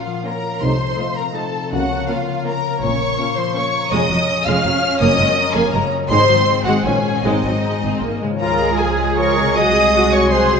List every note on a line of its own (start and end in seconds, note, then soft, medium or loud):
0.00 0.64 A#2 medium
0.00 0.16 A#3 soft
0.00 0.16 C#4 soft
0.00 0.24 C#4 soft
0.00 0.24 F4 soft
0.00 0.98 F4 soft
0.00 0.42 A#4 soft
0.00 0.26 F5 medium
0.06 3.36 F3 soft
0.25 0.53 A#3 soft
0.25 0.64 C#4 soft
0.25 0.53 C#4 soft
0.25 0.63 A#4 medium
0.25 0.62 A#5 medium
0.43 0.63 A#4 soft
0.62 0.91 C2 medium
0.62 0.91 C3 medium
0.62 1.74 C3 medium
0.62 0.75 A3 soft
0.62 0.75 D#4 soft
0.62 1.18 C5 medium
0.62 1.17 C6 medium
0.80 1.52 A4 soft
0.99 1.26 A3 soft
0.99 1.26 D#4 soft
0.99 2.08 F4 soft
1.16 1.74 C4 soft
1.16 1.24 A#4 medium
1.16 1.35 A#5 medium
1.35 1.63 A3 soft
1.35 1.74 D#4 soft
1.35 1.63 D#4 soft
1.35 1.72 A4 medium
1.35 1.72 A5 medium
1.54 1.74 A4 soft
1.72 2.02 C#2 medium
1.72 2.84 C#3 medium
1.72 2.01 C#3 medium
1.72 1.85 A#3 soft
1.72 1.85 C#4 soft
1.72 2.09 F#4 medium
1.72 2.09 F#5 medium
1.91 2.63 A#4 soft
2.09 2.37 A#3 medium
2.09 2.37 C#4 medium
2.09 3.18 F4 soft
2.09 2.47 F4 medium
2.09 2.46 F5 medium
2.27 3.93 A#3 soft
2.46 2.74 A#3 medium
2.46 3.54 C#4 soft
2.46 2.74 C#4 medium
2.46 2.83 A#4 medium
2.46 2.83 A#5 medium
2.64 3.00 A#4 soft
2.82 3.12 A#1 medium
2.82 3.93 A#2 medium
2.82 3.12 A#2 medium
2.82 2.96 A#3 medium
2.82 2.96 C#4 medium
2.82 3.37 C#5 medium
2.82 3.37 C#6 medium
3.01 3.73 A#4 soft
3.19 3.46 A#3 medium
3.19 3.46 C#4 medium
3.19 5.02 F4 soft
3.37 4.46 F3 soft
3.37 3.56 C5 medium
3.37 3.56 C6 medium
3.55 3.83 A#3 medium
3.55 4.64 C#4 soft
3.55 3.83 C#4 medium
3.55 3.92 C#5 medium
3.55 3.92 C#6 medium
3.74 3.94 A#4 soft
3.92 4.00 F1 medium
3.92 3.99 F2 medium
3.92 5.03 F2 medium
3.92 4.09 G#3 medium
3.92 4.05 G#3 medium
3.92 4.05 C#4 medium
3.92 6.07 C#4 medium
3.92 4.47 D#5 medium
3.92 4.47 D#6 medium
4.10 4.18 F1 soft
4.10 4.17 F2 soft
4.10 4.18 F#3 soft
4.10 4.82 C#5 soft
4.29 5.03 G#4 soft
4.46 4.54 F1 medium
4.46 4.54 F2 medium
4.46 5.03 F3 medium
4.46 4.64 G#3 medium
4.46 5.01 F5 medium
4.46 5.02 F6 loud
4.65 4.72 F1 medium
4.65 4.72 F2 medium
4.65 4.72 F#3 medium
4.65 5.73 C#4 soft
4.83 6.12 C#5 medium
5.01 5.08 F#1 medium
5.01 5.08 F#2 medium
5.01 6.12 F#2 medium
5.01 5.18 A#3 medium
5.01 5.14 A#3 medium
5.01 5.14 C#4 medium
5.01 5.55 D#5 medium
5.01 5.54 D#6 medium
5.19 5.26 F#1 medium
5.19 5.26 F#2 medium
5.19 5.27 G#3 soft
5.19 5.91 D#5 medium
5.37 6.12 A#4 medium
5.55 5.63 F#1 medium
5.55 5.63 F#2 medium
5.55 6.12 C#3 medium
5.55 5.72 A#3 medium
5.55 5.62 G#4 medium
5.55 5.74 G#5 medium
5.72 5.81 F#1 medium
5.72 5.81 F#2 medium
5.72 5.81 G#3 medium
5.72 6.12 C#4 soft
5.72 5.82 A#4 medium
5.72 5.91 A#5 medium
5.92 6.28 D#5 medium
6.10 6.17 G#1 medium
6.10 6.18 G#2 medium
6.10 6.62 G#2 medium
6.10 6.87 G#2 medium
6.10 6.28 G#3 medium
6.10 6.24 G#3 medium
6.10 6.84 C4 medium
6.10 6.23 D#4 medium
6.10 6.62 C5 medium
6.10 6.62 C6 loud
6.29 6.36 G#1 medium
6.29 6.37 G#2 medium
6.29 6.36 F#3 medium
6.29 6.87 D#5 medium
6.48 7.03 G#4 medium
6.65 6.73 G#1 medium
6.65 6.74 G#2 medium
6.65 6.87 D#3 soft
6.65 6.84 G#3 medium
6.65 6.73 F#4 medium
6.65 6.84 F#5 medium
6.84 6.92 A#1 medium
6.84 7.26 A#2 medium
6.84 6.93 A#2 medium
6.84 6.93 D#3 soft
6.84 6.99 F3 medium
6.84 7.24 C#4 medium
6.84 6.99 C#4 medium
6.84 7.24 G#4 medium
6.84 7.24 G#5 medium
7.04 7.62 G#4 soft
7.04 7.26 C#5 soft
7.23 7.32 G#1 medium
7.23 8.43 G#2 medium
7.23 7.79 G#2 medium
7.23 7.32 G#2 medium
7.23 7.39 D#3 medium
7.23 7.43 G#3 medium
7.23 7.60 C4 soft
7.23 7.39 C4 medium
7.23 8.22 D#4 medium
7.23 8.21 D#5 medium
7.44 7.52 G#1 soft
7.44 7.52 G#2 soft
7.44 7.53 F#3 soft
7.44 8.20 C5 soft
7.63 7.82 G#3 medium
7.63 10.60 G#4 soft
7.82 7.91 G#1 medium
7.82 7.90 G#2 medium
7.82 8.43 D#3 soft
7.82 8.02 C4 medium
8.01 8.10 G#1 soft
8.01 8.09 G#2 soft
8.01 8.26 G#3 soft
8.01 8.22 A#3 medium
8.21 9.49 C#3 medium
8.21 8.30 G#3 medium
8.21 8.43 C5 soft
8.27 9.42 G#3 soft
8.31 9.53 F4 soft
8.36 9.56 C#5 soft
8.40 9.53 C#2 medium
8.40 8.59 F3 medium
8.40 10.60 G#3 medium
8.40 8.77 F4 medium
8.40 8.59 F4 medium
8.40 9.53 F4 medium
8.40 10.60 G#4 medium
8.40 8.82 A#4 medium
8.40 8.81 A#4 medium
8.40 8.77 A#4 medium
8.40 8.77 A#5 medium
8.60 8.80 G#3 soft
8.60 8.80 G#4 soft
8.79 8.99 F3 soft
8.79 8.99 F4 soft
8.79 9.18 G#4 medium
8.79 9.17 G#4 medium
8.79 9.19 G#4 medium
8.79 9.17 G#4 medium
8.79 9.18 G#5 medium
8.99 9.18 G#3 soft
8.99 9.18 G#4 soft
9.18 9.36 F3 soft
9.18 9.36 F4 soft
9.18 9.56 A#4 medium
9.18 9.56 C#5 medium
9.18 9.56 C#6 medium
9.37 10.60 C3 medium
9.37 9.57 G#3 soft
9.37 9.57 G#4 soft
9.43 10.55 G#3 soft
9.47 10.60 F#4 soft
9.52 10.60 D#5 soft
9.52 10.12 D#5 medium
9.52 10.13 D#6 medium
9.56 10.60 C2 medium
9.56 9.74 F#3 medium
9.56 9.75 F#4 medium
9.56 10.60 F#4 medium
9.56 9.95 G#4 medium
9.56 10.12 D#5 medium
9.56 10.16 D#5 medium
9.76 9.95 G#3 soft
9.76 9.95 G#4 soft
9.94 10.14 F#3 soft
9.94 10.31 F#4 medium
9.94 10.14 F#4 soft
10.12 10.32 G#3 soft
10.12 10.32 G#4 soft
10.12 10.20 C#5 medium
10.12 10.33 C#5 medium
10.12 10.32 C#6 medium
10.30 10.50 F#3 soft
10.30 10.50 F#4 soft
10.30 10.60 G#4 medium
10.30 10.60 C5 medium
10.30 10.60 C6 medium
10.51 10.60 C#3 medium
10.51 10.60 G#3 medium
10.51 10.60 G#4 medium
10.56 10.60 G#3 soft